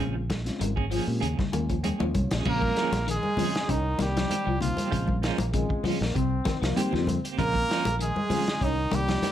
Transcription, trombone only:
2.49 3.05 A#3 loud
3.11 3.73 G#3 medium
3.72 4.04 D#3 medium
4.02 4.63 G3 medium
4.63 5.20 F3 medium
7.40 7.97 A#3 loud
8.02 8.66 G#3 medium
8.65 8.96 D#3 medium
8.95 9.32 G3 medium

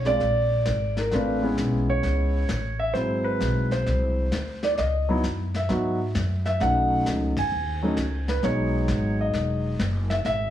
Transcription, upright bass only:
0.00 0.19 B1 medium
0.21 0.65 A#1 medium
0.67 1.11 G#1 medium
1.12 1.56 A1 medium
1.58 2.02 B1 medium
2.03 2.48 C#2 medium
2.49 2.94 A1 medium
2.94 3.39 G#1 medium
3.40 3.85 B1 medium
3.86 4.31 C2 medium
4.31 4.76 D2 medium
4.78 5.22 C#2 medium
5.23 5.68 F#2 medium
5.69 6.14 G#2 medium
6.15 6.59 F#2 medium
6.60 7.05 B1 medium
7.06 7.35 C#2 medium
7.37 muted upright bass stroke soft
7.52 7.96 D#2 medium
7.97 8.41 C#2 medium
8.43 8.87 B1 medium
8.88 9.33 G#1 medium
9.34 9.78 E1 medium
9.79 10.24 F#1 medium
10.25 10.50 G#1 medium

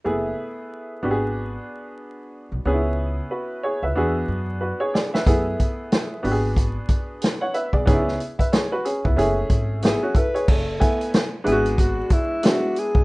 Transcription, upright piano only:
0.04 1.02 A3 medium
0.04 1.01 B3 medium
0.04 1.03 E4 medium
0.04 1.03 G#4 medium
1.03 2.62 B3 medium
1.03 2.63 D4 medium
1.03 2.63 F#4 medium
1.03 1.11 G4 medium
1.11 2.66 G#4 medium
2.65 3.93 B3 medium
2.65 3.94 C#4 medium
2.65 2.74 D4 soft
2.65 3.30 G#4 medium
2.74 3.98 E4 medium
3.31 3.62 F#4 soft
3.31 3.62 B4 soft
3.63 3.82 G#4 medium
3.63 3.82 C#5 medium
3.83 4.14 B4 soft
3.83 4.14 E5 medium
3.96 5.24 B3 medium
3.96 5.24 D4 medium
3.96 4.60 F#4 medium
3.96 4.61 G#4 medium
4.61 4.79 F#4 soft
4.61 4.79 B4 medium
4.80 4.93 G#4 medium
4.80 4.93 C#5 medium
4.94 5.13 G#4 soft
4.94 5.12 D5 medium
5.14 5.45 B4 soft
5.14 5.44 E5 medium
5.26 6.24 A3 medium
5.26 6.21 B3 medium
5.26 6.25 E4 medium
5.26 6.25 G#4 medium
6.23 7.83 B3 medium
6.23 7.84 D4 medium
6.23 7.84 F#4 medium
6.23 6.32 G4 medium
6.32 7.24 G#4 medium
7.41 7.54 C#5 medium
7.41 7.54 F#5 medium
7.54 7.73 B4 medium
7.54 7.73 E5 medium
7.73 7.86 G#4 soft
7.73 8.04 D5 medium
7.86 8.18 B3 medium
7.86 8.19 C#4 medium
7.86 7.95 D#4 medium
7.86 8.19 G#4 medium
7.94 8.22 E4 medium
8.39 8.52 B4 soft
8.39 8.52 E5 medium
8.52 8.71 G#4 medium
8.52 8.71 C#5 medium
8.72 8.85 F#4 medium
8.72 8.85 B4 medium
8.85 9.04 C#4 soft
8.85 9.03 G#4 medium
9.04 9.35 B3 soft
9.04 9.16 E4 medium
9.16 10.45 A3 medium
9.16 9.81 C#4 medium
9.16 9.81 E4 medium
9.16 9.82 G#4 medium
9.83 10.01 B3 soft
9.83 10.01 E4 medium
10.03 10.15 C#4 medium
10.03 10.15 F#4 medium
10.15 10.34 E4 soft
10.15 10.34 A4 medium
10.34 10.66 G#4 soft
10.34 10.66 C#5 medium
10.79 11.20 A3 medium
10.79 11.21 B3 medium
10.79 11.21 E4 medium
10.79 11.21 G#5 medium
11.44 12.34 G#3 medium
11.44 12.34 B3 medium
11.44 12.34 D4 medium
11.44 11.53 E4 medium
11.52 12.38 F#4 medium
12.43 13.04 G#3 medium
12.43 13.04 B3 soft
12.43 13.04 D4 medium
12.43 13.04 E4 medium

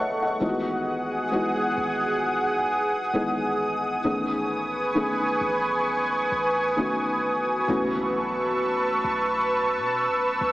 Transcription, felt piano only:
0.00 0.42 G#4 medium
0.00 0.43 B4 medium
0.00 0.21 C#5 medium
0.00 0.23 D#5 medium
0.00 0.43 E5 medium
0.00 0.37 A5 medium
0.22 0.66 D#5 medium
0.22 0.65 F#5 medium
0.40 1.24 E3 medium
0.40 1.25 G#3 medium
0.40 1.25 B3 medium
0.40 1.25 D#4 medium
0.40 0.49 F4 medium
0.49 1.29 F#4 medium
1.31 2.99 E3 medium
1.31 3.00 G#3 medium
1.31 3.00 B3 medium
1.31 3.00 D#4 medium
1.31 3.00 F#4 medium
3.13 3.97 E3 medium
3.13 3.98 G#3 medium
3.13 3.98 B3 medium
3.13 3.98 D#4 medium
3.13 3.98 G#4 medium
4.04 4.88 D#3 medium
4.04 4.88 A3 medium
4.04 4.89 B3 medium
4.04 4.89 C#4 medium
4.04 4.89 G#4 medium
4.95 6.63 D#3 medium
4.95 6.63 A3 medium
4.95 6.64 B3 medium
4.95 6.64 C#4 medium
4.95 6.64 G#4 medium
6.77 7.61 D#3 medium
6.77 7.61 A3 medium
6.77 7.61 B3 medium
6.77 7.62 C#4 medium
6.77 7.62 F#4 medium
7.68 9.36 E3 medium
7.68 9.36 A3 medium
7.68 9.36 B3 medium
7.68 9.37 C#4 medium
7.68 9.37 F#4 medium

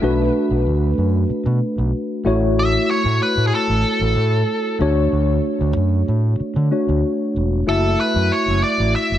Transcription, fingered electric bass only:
0.03 0.27 B1 loud
0.51 0.63 B1 medium
0.67 0.91 D2 medium
0.98 1.22 F#2 medium
1.30 muted fingered electric bass stroke soft
1.46 1.58 B2 medium
1.78 1.90 B1 medium
2.26 2.74 A1 medium
3.05 3.17 A2 medium
3.37 3.49 A2 medium
3.69 3.81 A1 medium
4.01 4.13 A1 medium
4.16 4.41 A2 loud
4.80 5.05 D2 loud
5.12 5.37 D2 medium
5.61 5.73 D2 medium
5.76 6.01 F#2 medium
6.08 6.32 A2 medium
6.40 muted fingered electric bass stroke soft
6.56 6.68 D3 medium
6.88 7.00 D2 medium
7.36 7.60 E1 medium
7.68 7.92 F#1 loud
8.15 8.28 F#2 medium
8.48 8.60 F#1 medium
8.80 8.92 A1 medium
9.11 9.18 F#1 medium

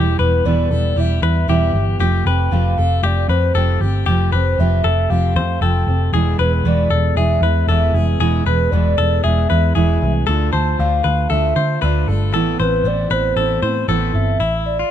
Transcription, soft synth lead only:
0.19 0.47 B4 medium
0.46 1.01 D5 loud
1.00 1.48 E5 loud
1.49 1.85 E5 loud
2.25 2.54 G5 loud
2.52 3.07 F5 loud
3.05 3.30 D5 loud
3.30 3.78 C5 medium
4.34 4.61 C5 medium
4.60 5.12 E5 loud
5.10 5.64 F5 loud
5.63 6.01 G5 loud
6.40 6.52 B4 medium
6.67 7.18 D5 loud
7.17 7.69 E5 loud
7.70 8.06 E5 loud
8.47 8.71 B4 medium
8.71 9.25 D5 loud
9.24 9.75 E5 loud
9.77 10.12 E5 medium
10.52 10.77 A5 loud
10.79 11.32 F5 loud
11.31 11.85 E5 loud
11.84 12.22 D5 medium
12.61 12.89 B4 loud
12.87 13.14 D5 loud
13.13 13.90 C5 loud
14.15 14.63 E5 loud
14.66 14.91 D5 loud

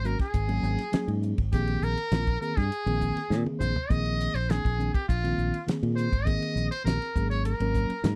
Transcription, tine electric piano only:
0.03 0.15 F#3 medium
0.03 0.15 A#3 medium
0.03 0.15 C#4 medium
0.03 0.15 F#4 medium
0.21 0.27 G#4 soft
0.48 0.80 F#3 medium
0.48 0.81 A#3 medium
0.48 0.81 C#4 medium
0.48 0.81 G#4 medium
0.92 1.35 F#3 medium
0.92 1.36 A#3 medium
0.92 1.36 C#4 medium
0.92 1.36 G#4 medium
1.53 1.95 D#3 medium
1.53 1.96 A#3 medium
1.53 1.96 C4 medium
1.53 1.96 G#4 medium
2.12 2.23 D#3 medium
2.12 2.23 A#3 medium
2.12 2.23 C4 medium
2.12 2.24 F4 medium
2.27 2.34 C4 soft
2.41 2.52 D#3 medium
2.41 2.52 A#3 medium
2.41 2.53 C4 medium
2.41 2.53 G#4 medium
2.86 3.18 D#3 medium
2.86 3.18 A#3 medium
2.86 3.19 C4 medium
2.86 3.19 G#4 medium
3.31 3.73 D#3 medium
3.31 3.74 A#3 medium
3.31 3.74 C4 medium
3.31 3.74 G#4 medium
3.90 4.32 D#3 medium
3.90 4.33 A#3 medium
3.90 4.33 C4 medium
3.90 4.33 G#4 medium
4.49 4.60 D#3 medium
4.49 4.60 A#3 medium
4.49 4.60 C4 medium
4.49 4.61 D4 medium
4.64 4.71 C4 soft
4.64 4.72 A#4 soft
4.78 4.89 D#3 medium
4.78 4.90 A#3 medium
4.78 4.90 C4 medium
4.78 4.90 D4 medium
4.94 5.01 C4 soft
4.94 5.02 A#4 soft
5.23 5.55 D#3 medium
5.23 5.55 A#3 medium
5.23 5.55 C4 medium
5.23 5.56 F4 medium
5.67 6.10 D#3 medium
5.67 6.10 A#3 medium
5.67 6.10 C4 medium
5.67 6.10 G#4 medium
6.25 6.68 D#3 medium
6.25 6.69 A#3 medium
6.25 6.69 C4 medium
6.25 6.69 G#4 medium
6.84 6.96 D#3 medium
6.84 6.96 A#3 medium
6.84 6.96 C4 medium
6.84 6.97 G4 medium
7.15 7.51 F#3 medium
7.15 7.51 A#3 medium
7.15 7.51 C#4 medium
7.15 7.52 G#4 medium
7.60 7.92 F#3 medium
7.60 7.92 A#3 medium
7.60 7.92 C#4 medium
7.60 7.93 A#4 medium
8.04 8.15 F#3 medium
8.04 8.15 A#3 medium
8.04 8.15 C#4 medium
8.04 8.15 A#4 medium

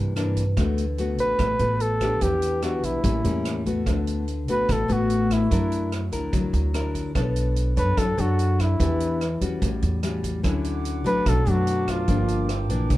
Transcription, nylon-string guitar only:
0.00 0.55 C3 soft
0.00 0.13 E3 medium
0.00 0.13 A#3 medium
0.00 0.13 D4 medium
0.16 0.42 E3 medium
0.16 0.43 A#3 soft
0.16 0.43 D4 medium
0.57 1.37 D3 medium
0.57 0.83 A3 medium
0.57 0.84 B3 medium
0.57 0.84 F#4 medium
0.98 1.57 A3 medium
0.98 1.57 B3 medium
0.98 1.57 F#4 medium
1.39 2.19 A2 soft
1.59 1.97 A3 medium
1.59 1.98 B3 medium
1.59 1.98 F#4 medium
2.01 2.60 B3 medium
2.01 2.60 D4 soft
2.01 2.60 G4 medium
2.21 3.02 E3 medium
2.62 3.02 B3 medium
2.62 3.02 D4 medium
2.62 3.02 G4 medium
3.04 3.84 A2 medium
3.04 3.21 G3 soft
3.04 3.21 A#3 medium
3.04 3.21 C#4 medium
3.24 3.62 G3 medium
3.24 3.62 A#3 medium
3.24 3.63 C#4 medium
3.66 4.24 A3 medium
3.66 4.24 B3 medium
3.66 4.24 F#4 medium
3.87 4.66 D3 medium
4.48 4.86 A3 medium
4.48 4.86 B3 medium
4.48 4.86 F#4 medium
4.69 5.49 A2 medium
4.88 5.47 A3 medium
4.88 5.47 B3 medium
4.88 5.47 F#4 medium
5.51 6.31 F#3 medium
5.51 5.91 D4 medium
5.51 5.92 E4 medium
5.51 5.92 A#4 medium
6.12 6.70 D4 medium
6.12 6.70 E4 medium
6.12 6.71 A#4 medium
6.32 7.13 F#3 medium
6.74 7.12 D4 medium
6.74 7.12 E4 medium
6.74 7.12 A#4 medium
7.15 7.95 B3 medium
7.15 7.73 D4 medium
7.15 7.73 A4 medium
7.15 7.74 C#5 medium
7.76 8.14 D4 medium
7.76 8.14 A4 medium
7.76 8.15 C#5 medium
7.97 8.77 F#3 medium
8.17 8.76 D4 medium
8.17 8.76 A4 medium
8.17 8.76 C#5 medium
8.79 9.59 E3 medium
8.79 9.20 B3 medium
8.79 9.20 D4 medium
8.79 9.21 G4 medium
9.41 9.99 G3 medium
9.41 10.00 C#4 medium
9.41 10.00 F#4 medium
9.62 10.42 A2 medium
10.03 10.40 G3 medium
10.03 10.41 C#4 medium
10.03 10.41 F#4 medium
10.43 11.23 D3 medium
10.43 11.02 F#3 medium
10.43 11.02 C#4 medium
10.43 11.02 E4 medium
11.04 11.43 F#3 medium
11.04 11.43 A3 medium
11.04 11.43 D4 medium
11.26 12.06 B2 soft
11.46 12.04 F#3 medium
11.46 12.04 A3 medium
11.46 12.05 D4 medium
12.08 12.88 G2 medium
12.08 12.49 F3 medium
12.08 12.49 A#3 medium
12.08 12.49 D4 medium
12.70 12.98 E3 medium
12.70 12.98 A#3 medium
12.70 12.98 D4 medium
12.91 12.98 C3 medium

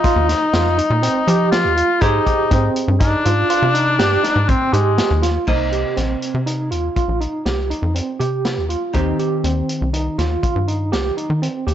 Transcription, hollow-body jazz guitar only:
0.00 1.97 F3 medium
0.00 1.97 D#4 medium
0.00 1.98 G#4 medium
2.01 5.44 G4 medium
2.01 5.43 G#4 medium
2.01 5.44 C5 medium
5.47 8.90 C3 medium
5.47 8.90 A#3 medium
5.47 8.91 D#5 medium
8.93 11.74 D#3 medium
8.93 11.74 C4 medium
8.93 11.74 G4 medium

